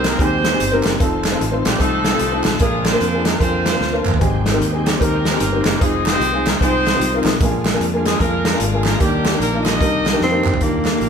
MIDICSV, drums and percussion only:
0, 0, Header, 1, 2, 480
1, 0, Start_track
1, 0, Key_signature, -3, "major"
1, 0, Tempo, 400267
1, 1202, Time_signature, 4, 2, 24, 8
1, 13302, End_track
2, 0, Start_track
2, 0, Title_t, "Drums"
2, 48, Note_on_c, 9, 42, 69
2, 56, Note_on_c, 9, 38, 103
2, 66, Note_on_c, 9, 39, 96
2, 168, Note_off_c, 9, 42, 0
2, 176, Note_off_c, 9, 38, 0
2, 186, Note_off_c, 9, 39, 0
2, 230, Note_on_c, 9, 36, 104
2, 240, Note_on_c, 9, 42, 78
2, 350, Note_off_c, 9, 36, 0
2, 360, Note_off_c, 9, 42, 0
2, 532, Note_on_c, 9, 38, 101
2, 538, Note_on_c, 9, 42, 57
2, 550, Note_on_c, 9, 39, 89
2, 652, Note_off_c, 9, 38, 0
2, 658, Note_off_c, 9, 42, 0
2, 670, Note_off_c, 9, 39, 0
2, 721, Note_on_c, 9, 42, 105
2, 841, Note_off_c, 9, 42, 0
2, 996, Note_on_c, 9, 39, 94
2, 1026, Note_on_c, 9, 38, 104
2, 1032, Note_on_c, 9, 42, 68
2, 1116, Note_off_c, 9, 39, 0
2, 1146, Note_off_c, 9, 38, 0
2, 1152, Note_off_c, 9, 42, 0
2, 1203, Note_on_c, 9, 36, 123
2, 1203, Note_on_c, 9, 42, 96
2, 1323, Note_off_c, 9, 36, 0
2, 1323, Note_off_c, 9, 42, 0
2, 1493, Note_on_c, 9, 39, 95
2, 1501, Note_on_c, 9, 38, 105
2, 1505, Note_on_c, 9, 42, 76
2, 1613, Note_off_c, 9, 39, 0
2, 1621, Note_off_c, 9, 38, 0
2, 1625, Note_off_c, 9, 42, 0
2, 1694, Note_on_c, 9, 42, 82
2, 1814, Note_off_c, 9, 42, 0
2, 1981, Note_on_c, 9, 42, 67
2, 1989, Note_on_c, 9, 38, 109
2, 1995, Note_on_c, 9, 39, 102
2, 2101, Note_off_c, 9, 42, 0
2, 2108, Note_off_c, 9, 38, 0
2, 2115, Note_off_c, 9, 39, 0
2, 2158, Note_on_c, 9, 36, 95
2, 2164, Note_on_c, 9, 42, 83
2, 2278, Note_off_c, 9, 36, 0
2, 2284, Note_off_c, 9, 42, 0
2, 2453, Note_on_c, 9, 38, 113
2, 2459, Note_on_c, 9, 42, 59
2, 2479, Note_on_c, 9, 39, 91
2, 2573, Note_off_c, 9, 38, 0
2, 2579, Note_off_c, 9, 42, 0
2, 2599, Note_off_c, 9, 39, 0
2, 2631, Note_on_c, 9, 42, 108
2, 2751, Note_off_c, 9, 42, 0
2, 2921, Note_on_c, 9, 39, 87
2, 2937, Note_on_c, 9, 38, 115
2, 2944, Note_on_c, 9, 42, 68
2, 3041, Note_off_c, 9, 39, 0
2, 3057, Note_off_c, 9, 38, 0
2, 3064, Note_off_c, 9, 42, 0
2, 3111, Note_on_c, 9, 42, 97
2, 3124, Note_on_c, 9, 36, 123
2, 3231, Note_off_c, 9, 42, 0
2, 3244, Note_off_c, 9, 36, 0
2, 3424, Note_on_c, 9, 38, 107
2, 3426, Note_on_c, 9, 39, 94
2, 3428, Note_on_c, 9, 42, 76
2, 3544, Note_off_c, 9, 38, 0
2, 3546, Note_off_c, 9, 39, 0
2, 3548, Note_off_c, 9, 42, 0
2, 3607, Note_on_c, 9, 42, 69
2, 3727, Note_off_c, 9, 42, 0
2, 3897, Note_on_c, 9, 42, 63
2, 3905, Note_on_c, 9, 38, 115
2, 3910, Note_on_c, 9, 39, 92
2, 4017, Note_off_c, 9, 42, 0
2, 4025, Note_off_c, 9, 38, 0
2, 4030, Note_off_c, 9, 39, 0
2, 4084, Note_on_c, 9, 36, 104
2, 4090, Note_on_c, 9, 42, 83
2, 4204, Note_off_c, 9, 36, 0
2, 4210, Note_off_c, 9, 42, 0
2, 4386, Note_on_c, 9, 38, 96
2, 4391, Note_on_c, 9, 42, 63
2, 4397, Note_on_c, 9, 39, 91
2, 4506, Note_off_c, 9, 38, 0
2, 4511, Note_off_c, 9, 42, 0
2, 4517, Note_off_c, 9, 39, 0
2, 4568, Note_on_c, 9, 38, 67
2, 4688, Note_off_c, 9, 38, 0
2, 4862, Note_on_c, 9, 39, 83
2, 4865, Note_on_c, 9, 45, 86
2, 4962, Note_on_c, 9, 43, 98
2, 4982, Note_off_c, 9, 39, 0
2, 4985, Note_off_c, 9, 45, 0
2, 5051, Note_on_c, 9, 36, 127
2, 5052, Note_on_c, 9, 42, 86
2, 5082, Note_off_c, 9, 43, 0
2, 5171, Note_off_c, 9, 36, 0
2, 5172, Note_off_c, 9, 42, 0
2, 5346, Note_on_c, 9, 38, 98
2, 5350, Note_on_c, 9, 42, 71
2, 5363, Note_on_c, 9, 39, 99
2, 5466, Note_off_c, 9, 38, 0
2, 5470, Note_off_c, 9, 42, 0
2, 5483, Note_off_c, 9, 39, 0
2, 5535, Note_on_c, 9, 42, 77
2, 5655, Note_off_c, 9, 42, 0
2, 5830, Note_on_c, 9, 42, 75
2, 5838, Note_on_c, 9, 38, 115
2, 5849, Note_on_c, 9, 39, 94
2, 5950, Note_off_c, 9, 42, 0
2, 5958, Note_off_c, 9, 38, 0
2, 5969, Note_off_c, 9, 39, 0
2, 6006, Note_on_c, 9, 36, 100
2, 6015, Note_on_c, 9, 42, 79
2, 6126, Note_off_c, 9, 36, 0
2, 6135, Note_off_c, 9, 42, 0
2, 6300, Note_on_c, 9, 38, 102
2, 6306, Note_on_c, 9, 42, 61
2, 6323, Note_on_c, 9, 39, 92
2, 6420, Note_off_c, 9, 38, 0
2, 6426, Note_off_c, 9, 42, 0
2, 6443, Note_off_c, 9, 39, 0
2, 6478, Note_on_c, 9, 42, 110
2, 6598, Note_off_c, 9, 42, 0
2, 6776, Note_on_c, 9, 39, 93
2, 6781, Note_on_c, 9, 38, 111
2, 6787, Note_on_c, 9, 42, 70
2, 6896, Note_off_c, 9, 39, 0
2, 6901, Note_off_c, 9, 38, 0
2, 6907, Note_off_c, 9, 42, 0
2, 6971, Note_on_c, 9, 36, 117
2, 6972, Note_on_c, 9, 42, 99
2, 7091, Note_off_c, 9, 36, 0
2, 7092, Note_off_c, 9, 42, 0
2, 7270, Note_on_c, 9, 39, 106
2, 7279, Note_on_c, 9, 38, 110
2, 7283, Note_on_c, 9, 42, 80
2, 7389, Note_off_c, 9, 39, 0
2, 7399, Note_off_c, 9, 38, 0
2, 7403, Note_off_c, 9, 42, 0
2, 7452, Note_on_c, 9, 42, 79
2, 7572, Note_off_c, 9, 42, 0
2, 7749, Note_on_c, 9, 42, 76
2, 7753, Note_on_c, 9, 39, 105
2, 7757, Note_on_c, 9, 38, 112
2, 7869, Note_off_c, 9, 42, 0
2, 7873, Note_off_c, 9, 39, 0
2, 7876, Note_off_c, 9, 38, 0
2, 7926, Note_on_c, 9, 36, 102
2, 7939, Note_on_c, 9, 42, 84
2, 8046, Note_off_c, 9, 36, 0
2, 8059, Note_off_c, 9, 42, 0
2, 8235, Note_on_c, 9, 38, 98
2, 8236, Note_on_c, 9, 39, 86
2, 8241, Note_on_c, 9, 42, 64
2, 8355, Note_off_c, 9, 38, 0
2, 8355, Note_off_c, 9, 39, 0
2, 8361, Note_off_c, 9, 42, 0
2, 8410, Note_on_c, 9, 42, 105
2, 8530, Note_off_c, 9, 42, 0
2, 8682, Note_on_c, 9, 39, 90
2, 8703, Note_on_c, 9, 38, 115
2, 8710, Note_on_c, 9, 42, 70
2, 8802, Note_off_c, 9, 39, 0
2, 8823, Note_off_c, 9, 38, 0
2, 8829, Note_off_c, 9, 42, 0
2, 8880, Note_on_c, 9, 42, 101
2, 8882, Note_on_c, 9, 36, 127
2, 9000, Note_off_c, 9, 42, 0
2, 9002, Note_off_c, 9, 36, 0
2, 9177, Note_on_c, 9, 39, 106
2, 9182, Note_on_c, 9, 38, 104
2, 9186, Note_on_c, 9, 42, 76
2, 9297, Note_off_c, 9, 39, 0
2, 9302, Note_off_c, 9, 38, 0
2, 9306, Note_off_c, 9, 42, 0
2, 9365, Note_on_c, 9, 42, 84
2, 9485, Note_off_c, 9, 42, 0
2, 9661, Note_on_c, 9, 42, 75
2, 9668, Note_on_c, 9, 38, 103
2, 9673, Note_on_c, 9, 39, 93
2, 9781, Note_off_c, 9, 42, 0
2, 9788, Note_off_c, 9, 38, 0
2, 9793, Note_off_c, 9, 39, 0
2, 9836, Note_on_c, 9, 36, 95
2, 9842, Note_on_c, 9, 42, 77
2, 9956, Note_off_c, 9, 36, 0
2, 9962, Note_off_c, 9, 42, 0
2, 10134, Note_on_c, 9, 38, 117
2, 10139, Note_on_c, 9, 42, 64
2, 10145, Note_on_c, 9, 39, 96
2, 10254, Note_off_c, 9, 38, 0
2, 10259, Note_off_c, 9, 42, 0
2, 10265, Note_off_c, 9, 39, 0
2, 10313, Note_on_c, 9, 42, 110
2, 10433, Note_off_c, 9, 42, 0
2, 10605, Note_on_c, 9, 39, 93
2, 10622, Note_on_c, 9, 38, 101
2, 10628, Note_on_c, 9, 42, 69
2, 10725, Note_off_c, 9, 39, 0
2, 10742, Note_off_c, 9, 38, 0
2, 10748, Note_off_c, 9, 42, 0
2, 10796, Note_on_c, 9, 42, 95
2, 10800, Note_on_c, 9, 36, 115
2, 10916, Note_off_c, 9, 42, 0
2, 10920, Note_off_c, 9, 36, 0
2, 11099, Note_on_c, 9, 38, 116
2, 11101, Note_on_c, 9, 39, 93
2, 11103, Note_on_c, 9, 42, 71
2, 11219, Note_off_c, 9, 38, 0
2, 11221, Note_off_c, 9, 39, 0
2, 11223, Note_off_c, 9, 42, 0
2, 11293, Note_on_c, 9, 42, 85
2, 11413, Note_off_c, 9, 42, 0
2, 11580, Note_on_c, 9, 42, 73
2, 11583, Note_on_c, 9, 39, 92
2, 11588, Note_on_c, 9, 38, 100
2, 11700, Note_off_c, 9, 42, 0
2, 11703, Note_off_c, 9, 39, 0
2, 11708, Note_off_c, 9, 38, 0
2, 11760, Note_on_c, 9, 36, 111
2, 11769, Note_on_c, 9, 42, 85
2, 11880, Note_off_c, 9, 36, 0
2, 11889, Note_off_c, 9, 42, 0
2, 12065, Note_on_c, 9, 39, 88
2, 12067, Note_on_c, 9, 38, 113
2, 12073, Note_on_c, 9, 42, 60
2, 12185, Note_off_c, 9, 39, 0
2, 12187, Note_off_c, 9, 38, 0
2, 12193, Note_off_c, 9, 42, 0
2, 12246, Note_on_c, 9, 38, 62
2, 12365, Note_off_c, 9, 38, 0
2, 12523, Note_on_c, 9, 39, 90
2, 12541, Note_on_c, 9, 45, 95
2, 12635, Note_on_c, 9, 43, 97
2, 12642, Note_off_c, 9, 39, 0
2, 12661, Note_off_c, 9, 45, 0
2, 12719, Note_on_c, 9, 42, 86
2, 12724, Note_on_c, 9, 36, 108
2, 12755, Note_off_c, 9, 43, 0
2, 12839, Note_off_c, 9, 42, 0
2, 12844, Note_off_c, 9, 36, 0
2, 13011, Note_on_c, 9, 39, 87
2, 13018, Note_on_c, 9, 38, 99
2, 13022, Note_on_c, 9, 42, 76
2, 13131, Note_off_c, 9, 39, 0
2, 13138, Note_off_c, 9, 38, 0
2, 13142, Note_off_c, 9, 42, 0
2, 13205, Note_on_c, 9, 42, 65
2, 13302, Note_off_c, 9, 42, 0
2, 13302, End_track
0, 0, End_of_file